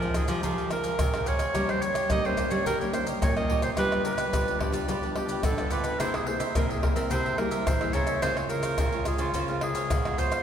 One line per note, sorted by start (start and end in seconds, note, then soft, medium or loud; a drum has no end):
0.00 0.41 C3 medium
0.00 0.11 D#3 medium
0.00 0.23 F3 medium
0.00 0.12 G#3 medium
0.00 0.12 C4 medium
0.00 0.17 A#4 loud
0.00 0.15 C5 soft
0.00 0.15 F5 soft
0.00 pandeiro soft
0.00 maracas soft
0.04 0.15 G#4 soft
0.14 0.51 D#3 medium
0.14 0.51 G#3 medium
0.14 0.52 C4 medium
0.14 0.29 D#4 soft
0.14 0.31 G#4 medium
0.14 0.29 G#4 medium
0.14 0.27 C5 medium
0.14 0.27 F5 medium
0.14 pandeiro medium
0.14 tamborim medium
0.14 maracas medium
0.28 0.41 F3 loud
0.28 0.71 G4 medium
0.28 0.43 G#4 medium
0.28 0.42 C5 medium
0.28 0.41 F5 medium
0.28 pandeiro medium
0.28 maracas medium
0.43 0.96 F2 medium
0.43 0.91 F3 medium
0.43 0.56 D#4 medium
0.43 0.56 G#4 medium
0.43 0.57 C5 medium
0.43 0.57 F5 medium
0.43 pandeiro medium
0.43 maracas medium
0.43 surdo medium
0.58 0.71 G#4 soft
0.58 0.71 C5 soft
0.58 0.70 F5 soft
0.58 pandeiro soft
0.58 maracas soft
0.71 1.09 D#3 medium
0.71 1.09 G#3 medium
0.71 1.09 C4 medium
0.71 1.29 A#4 medium
0.71 muted cavaquinho stroke soft
0.71 pandeiro medium
0.71 tamborim medium
0.71 maracas medium
0.84 1.12 G#4 medium
0.84 1.12 C5 medium
0.84 1.11 F5 medium
0.84 pandeiro medium
0.84 maracas medium
0.99 1.52 C3 medium
0.99 1.47 C3 medium
0.99 pandeiro medium
0.99 tamborim medium
0.99 maracas medium
0.99 surdo loud
1.13 1.51 D#3 medium
1.13 1.51 G#3 medium
1.13 1.51 C4 medium
1.13 1.26 G#4 soft
1.13 1.26 C5 soft
1.13 1.26 F5 medium
1.13 pandeiro soft
1.13 tamborim medium
1.13 maracas soft
1.26 1.40 D#4 medium
1.26 1.40 G#4 medium
1.26 1.38 C5 medium
1.26 1.72 C#5 loud
1.26 1.38 F5 medium
1.26 pandeiro medium
1.26 maracas medium
1.39 1.54 G#4 soft
1.39 1.53 C5 soft
1.39 1.53 F5 soft
1.39 pandeiro medium
1.39 tamborim medium
1.39 maracas medium
1.54 2.08 G2 medium
1.54 1.91 D#3 medium
1.54 2.02 G3 medium
1.54 1.91 A#3 soft
1.54 1.91 C#4 medium
1.54 1.80 D#4 medium
1.54 1.81 G4 medium
1.54 1.81 C#5 medium
1.54 1.81 D#5 medium
1.54 pandeiro medium
1.54 tamborim medium
1.54 maracas medium
1.54 surdo medium
1.69 1.84 C5 loud
1.69 pandeiro soft
1.69 tamborim medium
1.69 maracas soft
1.81 2.10 C#5 loud
1.81 muted cavaquinho stroke soft
1.81 pandeiro medium
1.81 maracas medium
1.94 2.09 G4 medium
1.94 2.09 C#5 medium
1.94 2.08 D#5 medium
1.94 pandeiro medium
1.94 tamborim medium
1.94 maracas medium
2.10 2.64 G2 medium
2.10 2.19 D#3 medium
2.10 2.46 G3 medium
2.10 2.19 A#3 medium
2.10 2.20 C#4 medium
2.10 2.23 D#4 soft
2.10 2.23 G4 medium
2.10 2.23 C#5 soft
2.10 2.27 D#5 loud
2.10 2.23 D#5 medium
2.10 pandeiro medium
2.10 tamborim medium
2.10 maracas medium
2.10 surdo loud
2.24 2.34 D#3 medium
2.24 2.34 A#3 medium
2.24 2.35 C#4 medium
2.24 2.37 G4 soft
2.24 2.54 C5 medium
2.24 2.38 C#5 soft
2.24 2.37 D#5 medium
2.24 pandeiro soft
2.24 maracas soft
2.37 2.76 D#3 medium
2.37 2.76 A#3 medium
2.37 2.76 C#4 medium
2.37 2.51 D#4 medium
2.37 2.51 G4 soft
2.37 2.50 C#5 medium
2.37 2.49 D#5 medium
2.37 pandeiro medium
2.37 tamborim medium
2.37 maracas medium
2.37 surdo medium
2.50 2.64 G3 medium
2.50 2.65 G4 medium
2.50 2.65 C#5 medium
2.50 2.66 C#5 loud
2.50 2.64 D#5 medium
2.50 pandeiro medium
2.50 maracas medium
2.66 3.19 G2 medium
2.66 3.14 G3 medium
2.66 2.79 D#4 medium
2.66 2.79 G4 medium
2.66 2.79 A#4 loud
2.66 2.79 C#5 medium
2.66 2.79 D#5 medium
2.66 pandeiro medium
2.66 maracas medium
2.66 surdo medium
2.81 2.90 D#3 medium
2.81 2.90 A#3 medium
2.81 2.90 C#4 medium
2.81 2.93 G4 soft
2.81 2.93 C#5 soft
2.81 2.93 D#5 medium
2.81 pandeiro soft
2.81 maracas soft
2.94 3.31 D#3 medium
2.94 3.31 A#3 medium
2.94 3.31 C#4 medium
2.94 3.06 C5 medium
2.94 muted cavaquinho stroke soft
2.94 pandeiro medium
2.94 tamborim medium
2.94 maracas medium
3.07 3.35 G4 medium
3.07 3.35 C#5 medium
3.07 3.34 D#5 medium
3.07 pandeiro medium
3.07 maracas medium
3.22 3.75 G2 medium
3.22 3.69 A#2 medium
3.22 3.35 C#5 medium
3.22 pandeiro medium
3.22 tamborim medium
3.22 maracas medium
3.22 surdo loud
3.36 3.73 D#3 medium
3.36 3.74 A#3 medium
3.36 3.74 C#4 medium
3.36 3.49 G4 soft
3.36 3.50 C#5 soft
3.36 3.62 D#5 medium
3.36 3.49 D#5 soft
3.36 pandeiro soft
3.36 tamborim medium
3.36 maracas soft
3.50 3.63 D#4 medium
3.50 3.63 G4 medium
3.50 3.63 C#5 medium
3.50 3.62 D#5 medium
3.50 pandeiro medium
3.62 3.77 G4 soft
3.62 3.70 C5 medium
3.62 3.77 C#5 soft
3.62 3.76 D#5 medium
3.62 pandeiro medium
3.62 tamborim medium
3.62 maracas medium
3.77 4.31 G2 medium
3.77 4.29 F3 medium
3.77 4.25 G3 loud
3.77 4.29 B3 medium
3.77 4.29 D4 medium
3.77 4.04 F4 medium
3.77 4.04 G4 medium
3.77 4.04 B4 loud
3.77 4.04 B4 medium
3.77 4.05 D5 medium
3.77 pandeiro medium
3.77 tamborim medium
3.77 maracas medium
3.77 surdo medium
3.92 pandeiro soft
3.92 tamborim medium
3.92 maracas soft
4.05 4.61 B4 loud
4.05 muted cavaquinho stroke soft
4.05 pandeiro medium
4.05 maracas medium
4.18 4.32 G4 medium
4.18 4.32 B4 medium
4.18 4.32 D5 medium
4.18 pandeiro medium
4.18 tamborim medium
4.18 maracas medium
4.33 4.86 D3 medium
4.33 4.56 F3 medium
4.33 4.68 G3 medium
4.33 4.57 B3 medium
4.33 4.57 D4 medium
4.33 4.46 F4 medium
4.33 4.46 G4 soft
4.33 4.47 B4 medium
4.33 4.47 D5 medium
4.33 pandeiro medium
4.33 tamborim medium
4.33 maracas medium
4.33 surdo loud
4.48 4.60 G4 soft
4.48 4.61 B4 soft
4.48 4.61 D5 medium
4.48 pandeiro soft
4.48 maracas soft
4.60 4.86 F3 medium
4.60 4.87 B3 medium
4.60 4.87 D4 medium
4.60 4.74 F4 soft
4.60 4.74 G4 medium
4.60 4.74 B4 medium
4.60 4.73 D5 medium
4.60 pandeiro medium
4.60 tamborim medium
4.60 surdo medium
4.72 4.85 G3 loud
4.72 4.88 G4 medium
4.72 4.88 B4 medium
4.72 4.87 D5 medium
4.72 pandeiro medium
4.72 maracas medium
4.88 5.42 G2 medium
4.88 5.36 G3 medium
4.88 5.02 F4 medium
4.88 5.02 G4 medium
4.88 5.03 B4 medium
4.88 5.03 D5 medium
4.88 pandeiro medium
4.88 maracas medium
4.88 surdo medium
5.03 5.12 F3 medium
5.03 5.13 B3 medium
5.03 5.13 D4 medium
5.03 5.16 G4 soft
5.03 5.16 B4 soft
5.03 5.16 D5 medium
5.03 pandeiro soft
5.03 maracas soft
5.15 5.42 F3 medium
5.15 5.42 B3 medium
5.15 5.43 D4 medium
5.15 5.42 G4 medium
5.15 muted cavaquinho stroke soft
5.15 pandeiro medium
5.15 tamborim medium
5.29 5.58 G4 medium
5.29 5.57 B4 medium
5.29 5.57 D5 medium
5.29 pandeiro medium
5.29 maracas medium
5.43 5.97 D3 medium
5.43 5.92 D3 medium
5.43 5.73 A4 medium
5.43 pandeiro medium
5.43 tamborim medium
5.43 maracas medium
5.43 surdo loud
5.58 5.96 F3 medium
5.58 5.96 B3 medium
5.58 5.96 D4 medium
5.58 5.71 G4 soft
5.58 5.72 B4 soft
5.58 5.71 D5 soft
5.58 pandeiro soft
5.58 tamborim medium
5.58 maracas soft
5.71 5.85 F4 medium
5.71 5.85 G4 medium
5.71 6.02 B4 medium
5.71 5.85 B4 medium
5.71 5.83 D5 medium
5.71 pandeiro medium
5.71 maracas medium
5.84 5.99 G4 soft
5.84 5.99 B4 medium
5.84 5.98 D5 medium
5.84 pandeiro medium
5.84 tamborim medium
5.84 maracas medium
5.99 6.53 C3 soft
5.99 6.47 C3 medium
5.99 6.16 A#3 medium
5.99 6.26 E4 medium
5.99 6.17 E4 medium
5.99 6.17 G#4 medium
5.99 6.26 A#4 medium
5.99 6.16 C5 loud
5.99 6.26 C5 medium
5.99 6.26 E5 medium
5.99 pandeiro medium
5.99 tamborim medium
5.99 maracas medium
5.99 surdo medium
6.14 6.29 G#4 medium
6.14 pandeiro soft
6.14 tamborim medium
6.14 maracas soft
6.27 6.44 A#3 medium
6.27 6.44 E4 medium
6.27 6.44 G#4 medium
6.27 6.55 C5 medium
6.27 muted cavaquinho stroke soft
6.27 pandeiro medium
6.40 6.55 A#4 medium
6.40 6.54 C5 medium
6.40 6.54 E5 medium
6.40 pandeiro medium
6.40 tamborim medium
6.40 maracas medium
6.55 7.09 G2 medium
6.55 6.91 C3 medium
6.55 6.72 A#3 medium
6.55 6.68 E4 medium
6.55 6.72 E4 medium
6.55 6.72 G#4 medium
6.55 6.72 A#4 medium
6.55 6.69 A#4 soft
6.55 6.69 C5 medium
6.55 6.68 E5 medium
6.55 pandeiro medium
6.55 tamborim medium
6.55 maracas medium
6.55 surdo loud
6.69 6.82 G#4 medium
6.69 6.82 A#4 soft
6.69 6.82 C5 soft
6.69 6.82 E5 medium
6.69 pandeiro soft
6.69 maracas soft
6.82 7.19 A#3 medium
6.82 6.96 E4 soft
6.82 7.19 E4 medium
6.82 7.19 G#4 medium
6.82 7.12 A#4 medium
6.82 6.96 A#4 soft
6.82 6.95 C5 medium
6.82 6.94 E5 medium
6.82 pandeiro medium
6.82 tamborim medium
6.82 surdo medium
6.95 7.09 C4 loud
6.95 7.10 A#4 medium
6.95 7.10 C5 medium
6.95 7.09 E5 medium
6.95 pandeiro medium
6.95 maracas medium
7.11 7.64 C3 medium
7.11 7.35 C3 medium
7.11 7.24 E4 medium
7.11 7.24 A#4 medium
7.11 7.40 C5 loud
7.11 7.25 C5 medium
7.11 7.24 E5 medium
7.11 pandeiro medium
7.11 maracas medium
7.11 surdo medium
7.25 7.37 A#4 soft
7.25 7.38 C5 soft
7.25 7.38 E5 medium
7.25 pandeiro soft
7.25 maracas soft
7.38 7.64 G3 medium
7.38 7.76 A#3 medium
7.38 7.77 E4 medium
7.38 7.77 G#4 medium
7.38 7.69 A#4 medium
7.38 muted cavaquinho stroke soft
7.38 pandeiro medium
7.38 tamborim medium
7.51 7.80 A#4 medium
7.51 7.80 C5 medium
7.51 7.79 E5 medium
7.51 pandeiro medium
7.51 maracas medium
7.66 8.20 G2 medium
7.66 7.92 E3 medium
7.66 7.95 C5 medium
7.66 pandeiro medium
7.66 tamborim medium
7.66 maracas medium
7.66 surdo loud
7.81 8.19 A#3 medium
7.81 8.19 E4 medium
7.81 8.19 G#4 medium
7.81 7.93 A#4 soft
7.81 7.94 C5 soft
7.81 7.95 E5 soft
7.81 pandeiro soft
7.81 tamborim medium
7.81 maracas soft
7.93 8.20 C#3 medium
7.93 8.08 E4 medium
7.93 8.08 A#4 medium
7.93 8.08 C5 medium
7.93 8.22 C#5 loud
7.93 8.07 E5 medium
7.93 pandeiro medium
7.93 maracas medium
8.07 8.23 A#4 soft
8.07 8.22 C5 medium
8.07 8.22 E5 medium
8.07 pandeiro medium
8.07 tamborim medium
8.07 maracas medium
8.22 8.71 C#3 medium
8.22 8.76 C#3 medium
8.22 8.75 G#3 medium
8.22 8.75 C4 soft
8.22 8.49 F4 medium
8.22 8.75 F4 medium
8.22 8.35 C5 loud
8.22 8.50 C5 medium
8.22 8.50 C#5 medium
8.22 8.50 F5 medium
8.22 pandeiro medium
8.22 tamborim medium
8.22 maracas medium
8.22 surdo medium
8.37 pandeiro soft
8.37 tamborim medium
8.37 maracas soft
8.49 9.03 A#4 loud
8.49 muted cavaquinho stroke soft
8.49 pandeiro medium
8.49 maracas medium
8.63 8.78 C5 medium
8.63 8.78 C#5 medium
8.63 8.77 F5 medium
8.63 pandeiro medium
8.63 tamborim medium
8.63 maracas medium
8.78 9.32 G#2 medium
8.78 9.15 C#3 medium
8.78 8.89 G#3 medium
8.78 8.89 C4 medium
8.78 8.91 F4 medium
8.78 8.89 F4 medium
8.78 8.92 C5 medium
8.78 8.92 C#5 medium
8.78 8.91 F5 medium
8.78 pandeiro medium
8.78 tamborim medium
8.78 maracas medium
8.78 surdo loud
8.92 9.03 G#3 medium
8.92 9.03 C4 medium
8.92 9.03 F4 medium
8.92 9.05 C5 soft
8.92 9.06 C#5 soft
8.92 9.06 F5 soft
8.92 pandeiro soft
8.92 maracas soft
9.05 9.33 G#3 medium
9.05 9.33 C4 medium
9.05 9.19 F4 medium
9.05 9.34 F4 medium
9.05 9.20 G#4 medium
9.05 9.20 C5 soft
9.05 9.19 C#5 medium
9.05 9.18 F5 medium
9.05 pandeiro medium
9.05 tamborim medium
9.05 maracas medium
9.18 9.32 C#3 medium
9.18 9.60 F4 medium
9.18 9.33 C5 medium
9.18 9.34 C#5 medium
9.18 9.33 F5 medium
9.18 pandeiro medium
9.18 maracas medium
9.34 9.83 C#3 medium
9.34 9.88 C#3 medium
9.34 9.48 F4 medium
9.34 9.48 C5 medium
9.34 9.48 C#5 medium
9.34 9.48 F5 medium
9.34 pandeiro medium
9.34 maracas medium
9.34 surdo medium
9.48 9.59 G#3 medium
9.48 9.59 C4 medium
9.48 9.59 F4 medium
9.48 9.62 C5 soft
9.48 9.62 C#5 soft
9.48 9.62 F5 medium
9.48 pandeiro soft
9.48 maracas soft
9.61 9.89 G#3 medium
9.61 9.89 C4 medium
9.61 9.89 F4 medium
9.61 10.20 G#4 medium
9.61 muted cavaquinho stroke soft
9.61 pandeiro medium
9.61 tamborim medium
9.75 10.04 C5 medium
9.75 10.04 C#5 medium
9.75 10.03 F5 medium
9.75 pandeiro medium
9.75 maracas medium
9.90 10.43 G#2 medium
9.90 10.38 B2 medium
9.90 pandeiro medium
9.90 tamborim medium
9.90 maracas medium
9.90 surdo loud
10.05 10.43 G#3 medium
10.05 10.43 F4 medium
10.05 10.18 C5 soft
10.05 10.18 C#5 soft
10.05 10.18 F5 soft
10.05 pandeiro soft
10.05 tamborim medium
10.05 maracas soft
10.18 10.32 F4 medium
10.18 10.43 C5 loud
10.18 10.32 C5 medium
10.18 10.32 C#5 medium
10.18 10.31 F5 medium
10.18 pandeiro medium
10.18 maracas medium
10.32 10.43 C5 soft
10.32 10.43 C#5 soft
10.32 10.43 F5 medium
10.32 pandeiro medium
10.32 tamborim medium
10.32 maracas medium